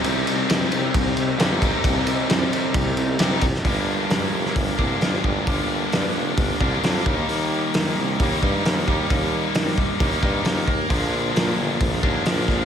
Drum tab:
RD |x-x-x-x-x-x-x-x-|x-x-x-x-x-x-x-x-|----------------|----------------|
HH |----------------|----------------|o---o---o---o---|o---o---o---o---|
SD |----o-------o---|----o-------o--o|----o--o----o---|----o-------o---|
BD |--------o-----o-|o-------o-----o-|o-------o-o---o-|o-------o-o---o-|

RD |----------------|----------------|----------------|
HH |o---o---o---o---|o---o---o---o---|o---o---o---o---|
SD |----o-------o---|----o-------o---|----o-------o-o-|
BD |--------o-o---o-|o-----o-o-o---o-|o-------o-o---o-|